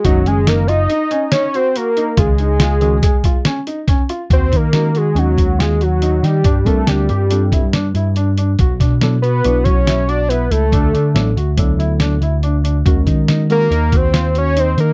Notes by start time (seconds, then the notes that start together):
0.04 F#1 D#3 G#3 C#4 D#4 F#4, kick, closed hi-hat
0.26 C#4 G#4, closed hi-hat
0.47 D#4 A#4, snare, closed hi-hat
0.67 F4 D#5, closed hi-hat
0.90 D#4, closed hi-hat
1.11 C#4, closed hi-hat
1.32 D#4 C#5, snare, closed hi-hat
1.54 F#4 C5, closed hi-hat
1.76 F#4 A#4, closed hi-hat
1.97 D#4, closed hi-hat
2.17 C#2 D#3 G#3 C#4 F4 G#4, kick, closed hi-hat
2.38 D#4, closed hi-hat
2.60 F4, snare, closed hi-hat
2.81 D#3 G#3 C#4 F#4 G#4, closed hi-hat
3.03 G#4, kick, closed hi-hat
3.24 F4, kick, closed hi-hat
3.45 C#4, snare, closed hi-hat
3.67 D#4, closed hi-hat
3.88 C#4, kick, snare, closed hi-hat
4.09 F4, closed hi-hat
4.30 D#2 F#4 C5, kick, closed hi-hat
4.52 D#3 D#4, kick, closed hi-hat
4.56 A#4
4.73 D#3 G#3 C#4 D#4 F#4, snare, closed hi-hat
4.95 F#4 G#4, closed hi-hat
5.15 D#2 D#3 G#3 C#4 D#4 F#4, closed hi-hat
5.37 D#2 F#4, kick, closed hi-hat
5.59 F4 G#4, snare, closed hi-hat
5.80 F#4, closed hi-hat
6.02 D#4, closed hi-hat
6.23 D#3 D#4 G4, snare, closed hi-hat
6.44 G2 D4, kick, closed hi-hat
6.66 G3 C4 D4 F4 A4 A#4, kick, closed hi-hat
6.87 D2 D4 G4, snare, closed hi-hat
7.09 G2 G4, closed hi-hat
7.30 G3 C4 D4 F4 A4, closed hi-hat
7.52 G2 E4, kick, closed hi-hat
7.73 D4, snare, closed hi-hat
7.94 G2 E4, closed hi-hat
8.16 D4, closed hi-hat
8.37 D4, closed hi-hat
8.59 B1 F#4, kick, closed hi-hat
8.80 B2 D4, kick, snare, closed hi-hat
9.01 F#3 B3 D4 E4 A4, snare, closed hi-hat
9.22 F#4 B4, closed hi-hat
9.44 B1 F#3 B3 D4 E4 F#4, closed hi-hat
9.64 B1 F#4 C#5, kick, closed hi-hat
9.87 E4, snare, closed hi-hat
10.08 F#4 D5, closed hi-hat
10.29 E4 B4, closed hi-hat
10.51 C#2 E4 A4, closed hi-hat
10.72 D2 D4, kick, closed hi-hat
10.93 D3 D4, closed hi-hat
11.14 A1 F#3 B3 D4 E4 A4, snare, closed hi-hat
11.36 D2 F#4, closed hi-hat
11.57 F#3 B3 D4 E4 A4, kick, closed hi-hat
11.78 D2 E4, closed hi-hat
12.00 D4, snare, closed hi-hat
12.21 D2 E4, closed hi-hat
12.43 D4, closed hi-hat
12.64 D4, closed hi-hat
12.85 D#2 G#3 C#4 F#4 A#4, kick, closed hi-hat
13.06 D#3 D#4, kick, closed hi-hat
13.28 D#4, snare, closed hi-hat
13.50 G#3 C#4 F#4 A#4, closed hi-hat
13.71 D#2 D#4, closed hi-hat
13.92 D#2 F#4 C5, kick, closed hi-hat
14.13 F4, snare, closed hi-hat
14.35 F#4 C#5, closed hi-hat
14.57 D#4 C5, closed hi-hat
14.78 D#3 D#4 A#4, closed hi-hat